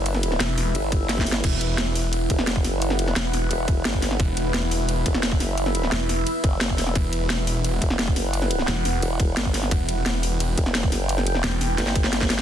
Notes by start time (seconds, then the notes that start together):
Already playing: F#1 E4 B4 E5
0.06 closed hi-hat, ride
0.14 snare
0.23 closed hi-hat, ride
0.32 snare
0.40 E1, snare, closed hi-hat, ride
0.58 E1, snare, open hi-hat, ride
0.75 G1, closed hi-hat, ride
0.92 kick, closed hi-hat, ride
1.09 snare, closed hi-hat, ride
1.18 kick, snare
1.26 G1, open hi-hat, ride
1.32 snare
1.44 E1 F#5, kick, closed hi-hat, ride, crash
1.61 closed hi-hat, ride
1.78 snare, closed hi-hat, ride
1.95 open hi-hat, ride
2.13 closed hi-hat, ride
2.30 E1, kick, closed hi-hat, ride
2.39 snare
2.47 snare, closed hi-hat, ride
2.56 kick
2.64 F#1, snare, open hi-hat, ride
2.82 closed hi-hat, ride
2.90 snare
2.99 closed hi-hat, ride
3.08 snare
3.16 E1, snare, closed hi-hat, ride
3.33 E1, snare, open hi-hat, ride
3.51 E1, closed hi-hat, ride
3.68 kick, closed hi-hat, ride
3.85 G1, snare, closed hi-hat, ride
3.94 kick
4.02 snare, open hi-hat, ride
4.11 snare
4.20 E1 E5, kick, closed hi-hat, ride
4.37 closed hi-hat, ride
4.54 snare, closed hi-hat, ride
4.71 open hi-hat, ride
4.89 closed hi-hat, ride
5.06 E1, kick, closed hi-hat, ride
5.14 snare
5.23 snare, closed hi-hat, ride
5.32 kick
5.40 F#1, snare, open hi-hat, ride
5.58 closed hi-hat, ride
5.66 snare
5.75 closed hi-hat, ride
5.83 snare
5.92 E1, snare, closed hi-hat, ride
6.09 E1, snare, open hi-hat, ride
6.27 closed hi-hat, ride
6.44 F#1, kick, closed hi-hat, ride
6.61 snare, closed hi-hat, ride
6.70 kick
6.78 E1, snare, open hi-hat, ride
6.87 snare
6.95 E1 F#5, kick, closed hi-hat, ride
7.13 closed hi-hat, ride
7.30 snare, closed hi-hat, ride
7.47 open hi-hat, ride
7.64 closed hi-hat, ride
7.82 E1, kick, closed hi-hat, ride
7.90 snare
7.99 snare, closed hi-hat, ride
8.08 kick
8.16 F#1, snare, open hi-hat, ride
8.33 closed hi-hat, ride
8.42 snare
8.51 closed hi-hat, ride
8.59 snare
8.68 E1, snare, closed hi-hat, ride
8.85 E1, snare, open hi-hat, ride
9.02 E1, closed hi-hat, ride
9.20 kick, closed hi-hat, ride
9.37 G1, snare, closed hi-hat, ride
9.45 kick
9.54 snare, open hi-hat, ride
9.63 snare
9.71 E1 G5, kick, closed hi-hat, ride
9.89 closed hi-hat, ride
10.06 snare, closed hi-hat, ride
10.23 open hi-hat, ride
10.40 closed hi-hat, ride
10.58 E1, kick, closed hi-hat, ride
10.66 snare
10.75 snare, closed hi-hat, ride
10.83 kick
10.92 F#1, snare, open hi-hat, ride
11.09 closed hi-hat, ride
11.18 snare
11.27 closed hi-hat, ride
11.35 snare
11.44 E1, snare, closed hi-hat, ride
11.61 E1, snare, open hi-hat, ride
11.78 G1, snare, closed hi-hat, ride
11.87 snare
11.95 kick, closed hi-hat, ride
12.04 snare
12.13 snare, closed hi-hat, ride
12.21 kick, snare
12.30 G1, snare, open hi-hat, ride
12.39 snare